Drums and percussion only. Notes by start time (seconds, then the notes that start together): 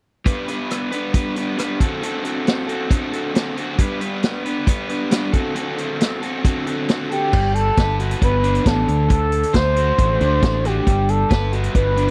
0.26 kick, closed hi-hat
0.48 closed hi-hat
0.70 cross-stick, closed hi-hat
0.92 closed hi-hat
1.14 kick, closed hi-hat
1.36 closed hi-hat
1.58 cross-stick, closed hi-hat
1.80 kick, closed hi-hat
2.03 closed hi-hat
2.25 closed hi-hat
2.47 snare, closed hi-hat
2.69 closed hi-hat
2.91 kick, closed hi-hat
3.13 closed hi-hat
3.35 snare, closed hi-hat
3.57 closed hi-hat
3.78 kick, closed hi-hat
4.01 closed hi-hat
4.23 snare, closed hi-hat
4.46 closed hi-hat
4.67 kick, closed hi-hat
4.89 closed hi-hat
5.11 snare, closed hi-hat
5.33 kick, closed hi-hat
5.56 closed hi-hat
5.78 closed hi-hat
6.00 snare, closed hi-hat
6.22 closed hi-hat
6.45 kick, closed hi-hat
6.67 closed hi-hat
6.88 snare, closed hi-hat
7.12 closed hi-hat
7.33 kick, crash
7.55 closed hi-hat
7.77 kick, snare, closed hi-hat
8.00 closed hi-hat
8.11 closed hi-hat
8.22 kick, closed hi-hat
8.44 closed hi-hat
8.55 closed hi-hat
8.66 kick, snare, closed hi-hat
8.88 closed hi-hat
9.10 kick, closed hi-hat
9.32 closed hi-hat
9.43 closed hi-hat
9.54 kick, snare, closed hi-hat
9.76 closed hi-hat
9.98 kick, closed hi-hat
10.21 closed hi-hat
10.43 kick, snare, closed hi-hat
10.65 snare, closed hi-hat
10.87 kick, closed hi-hat
11.09 closed hi-hat
11.31 kick, snare, closed hi-hat
11.53 closed hi-hat
11.63 closed hi-hat
11.75 kick, closed hi-hat
11.97 closed hi-hat